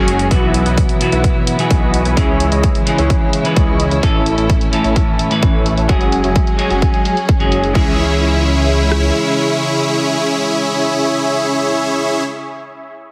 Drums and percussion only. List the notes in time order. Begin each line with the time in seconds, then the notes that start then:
0.08 closed hi-hat
0.19 closed hi-hat
0.31 kick, closed hi-hat
0.54 closed hi-hat
0.66 closed hi-hat
0.78 kick, closed hi-hat
0.89 closed hi-hat
1.01 closed hi-hat
1.12 closed hi-hat
1.24 kick, closed hi-hat
1.47 closed hi-hat
1.59 closed hi-hat
1.71 kick, closed hi-hat
1.94 closed hi-hat
2.05 closed hi-hat
2.17 kick, closed hi-hat
2.40 closed hi-hat
2.52 closed hi-hat
2.63 kick, closed hi-hat
2.75 closed hi-hat
2.87 closed hi-hat
2.98 closed hi-hat
3.10 kick, closed hi-hat
3.33 closed hi-hat
3.45 closed hi-hat
3.56 kick, closed hi-hat
3.80 closed hi-hat
3.91 closed hi-hat
4.03 kick, closed hi-hat
4.26 closed hi-hat
4.38 closed hi-hat
4.50 kick, closed hi-hat
4.61 closed hi-hat
4.73 closed hi-hat
4.84 closed hi-hat
4.96 kick, closed hi-hat
5.19 closed hi-hat
5.31 closed hi-hat
5.42 kick, closed hi-hat
5.66 closed hi-hat
5.78 closed hi-hat
5.89 kick, closed hi-hat
6.01 closed hi-hat
6.12 closed hi-hat
6.24 closed hi-hat
6.36 kick, closed hi-hat
6.47 closed hi-hat
6.59 closed hi-hat
6.70 closed hi-hat
6.82 kick, closed hi-hat
6.94 closed hi-hat
7.05 closed hi-hat
7.17 closed hi-hat
7.29 kick, closed hi-hat
7.40 closed hi-hat
7.52 closed hi-hat
7.64 closed hi-hat
7.75 kick
8.92 cross-stick